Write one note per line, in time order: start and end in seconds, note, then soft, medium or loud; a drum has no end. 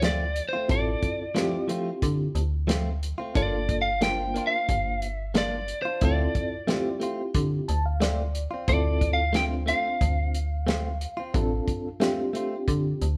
0.00 0.41 D2 medium
0.00 0.23 F3 medium
0.00 0.23 A3 medium
0.00 0.24 C4 medium
0.00 0.24 F4 medium
0.00 snare loud
0.00 closed hi-hat medium
0.05 0.45 D5 medium
0.36 closed hi-hat medium
0.49 0.68 C5 medium
0.53 0.74 A3 soft
0.53 0.73 C4 medium
0.53 0.72 F4 medium
0.68 0.96 A1 medium
0.68 1.22 C4 medium
0.68 1.22 E4 medium
0.68 1.22 F4 medium
0.68 1.22 A4 medium
0.68 1.66 D5 medium
0.68 kick loud
0.68 closed hi-hat medium
1.03 kick medium
1.03 closed hi-hat medium
1.35 1.56 F3 medium
1.35 1.56 A3 medium
1.35 2.40 C4 medium
1.35 1.57 C4 medium
1.35 2.40 E4 medium
1.35 2.41 F4 medium
1.35 1.57 F4 medium
1.35 2.41 G4 medium
1.35 snare loud
1.35 closed hi-hat medium
1.68 1.89 F3 medium
1.68 1.89 A3 medium
1.68 1.90 C4 medium
1.68 1.90 F4 medium
1.68 closed hi-hat medium
2.02 2.29 D3 medium
2.02 kick medium
2.02 closed hi-hat medium
2.35 3.14 D2 medium
2.35 closed hi-hat medium
2.67 2.88 F3 medium
2.67 2.89 A3 medium
2.67 2.89 C4 medium
2.67 2.90 F4 medium
2.67 snare loud
2.67 closed hi-hat medium
3.03 closed hi-hat medium
3.18 3.34 A3 soft
3.18 3.35 C4 soft
3.18 3.34 F4 medium
3.34 4.40 G1 loud
3.34 3.88 A#3 medium
3.34 3.55 A#3 medium
3.34 3.88 D4 medium
3.34 3.56 D4 medium
3.34 3.88 F4 medium
3.34 3.56 F4 medium
3.34 3.88 A4 medium
3.34 3.77 D5 medium
3.34 kick loud
3.34 closed hi-hat medium
3.69 kick medium
3.69 closed hi-hat medium
3.82 4.01 F5 medium
4.01 4.22 A#3 medium
4.01 5.06 A#3 medium
4.01 5.06 D4 medium
4.01 4.22 D4 medium
4.01 5.07 F4 medium
4.01 4.23 F4 medium
4.01 5.07 C5 medium
4.01 4.43 G5 loud
4.01 snare loud
4.01 closed hi-hat medium
4.34 4.55 A#3 medium
4.34 4.56 D4 medium
4.34 4.57 F4 medium
4.34 closed hi-hat medium
4.47 5.04 F5 loud
4.69 5.73 G1 medium
4.69 kick medium
4.69 closed hi-hat medium
5.02 5.31 E5 loud
5.02 closed hi-hat medium
5.34 5.55 A#3 medium
5.34 5.56 D4 medium
5.34 5.56 F4 medium
5.34 5.82 D5 medium
5.34 snare loud
5.34 closed hi-hat medium
5.68 closed hi-hat medium
5.82 6.01 F4 medium
5.82 6.03 C5 medium
5.88 6.02 D4 soft
6.01 6.28 D2 loud
6.01 6.22 A3 medium
6.01 6.54 C4 medium
6.01 6.22 C4 medium
6.01 6.55 E4 medium
6.01 6.55 F4 medium
6.01 6.23 F4 medium
6.01 6.55 A4 medium
6.01 6.99 D5 medium
6.01 kick loud
6.01 closed hi-hat medium
6.35 kick medium
6.35 closed hi-hat medium
6.67 6.88 A3 medium
6.67 7.73 C4 medium
6.67 6.89 C4 medium
6.67 7.73 E4 medium
6.67 7.73 F4 medium
6.67 6.89 F4 medium
6.67 7.73 G4 medium
6.67 snare loud
6.67 closed hi-hat medium
7.00 7.21 A3 medium
7.00 7.22 C4 medium
7.00 7.23 F4 medium
7.00 closed hi-hat medium
7.34 7.61 D3 medium
7.34 kick medium
7.34 closed hi-hat medium
7.68 8.47 D2 medium
7.68 7.84 A5 medium
7.68 closed hi-hat medium
7.86 8.00 F5 medium
8.00 8.21 A3 medium
8.00 8.22 C4 medium
8.00 8.23 F4 medium
8.00 8.64 D5 medium
8.00 snare loud
8.00 closed hi-hat medium
8.35 closed hi-hat medium
8.51 8.72 C4 soft
8.51 8.71 F4 medium
8.68 9.73 D2 loud
8.68 9.21 C4 medium
8.68 9.21 E4 medium
8.68 9.21 F4 medium
8.68 9.22 A4 medium
8.68 9.13 D5 medium
8.68 kick loud
8.68 closed hi-hat medium
9.01 kick medium
9.01 closed hi-hat medium
9.13 9.36 F5 medium
9.33 9.54 A3 medium
9.33 10.39 C4 medium
9.33 9.55 C4 medium
9.33 10.39 D4 medium
9.33 9.55 F4 medium
9.33 10.40 F4 medium
9.33 10.40 C5 medium
9.33 9.45 G5 loud
9.33 snare loud
9.33 closed hi-hat medium
9.66 9.87 A3 medium
9.66 9.88 C4 medium
9.66 9.89 F4 medium
9.66 13.17 F5 medium
9.66 closed hi-hat medium
10.01 11.06 D2 medium
10.01 kick medium
10.01 closed hi-hat medium
10.35 closed hi-hat medium
10.67 10.88 A3 medium
10.67 10.88 C4 medium
10.67 10.89 F4 medium
10.67 snare loud
10.67 closed hi-hat medium
11.01 closed hi-hat medium
11.17 11.38 C4 medium
11.17 11.37 F4 medium
11.34 11.61 A1 loud
11.34 11.87 C4 medium
11.34 11.87 D4 medium
11.34 11.88 F4 medium
11.34 11.88 A4 medium
11.34 kick loud
11.34 closed hi-hat medium
11.68 kick medium
11.68 closed hi-hat medium
12.00 12.21 A3 medium
12.00 13.05 C4 medium
12.00 12.22 C4 medium
12.00 13.06 D4 medium
12.00 13.06 F4 medium
12.00 12.22 F4 loud
12.00 13.06 G4 medium
12.00 snare loud
12.00 closed hi-hat medium
12.33 12.54 A3 medium
12.33 12.55 C4 medium
12.33 12.56 F4 medium
12.33 closed hi-hat medium
12.68 12.94 D3 medium
12.68 kick medium
12.68 closed hi-hat medium
13.02 13.17 D2 medium
13.02 closed hi-hat medium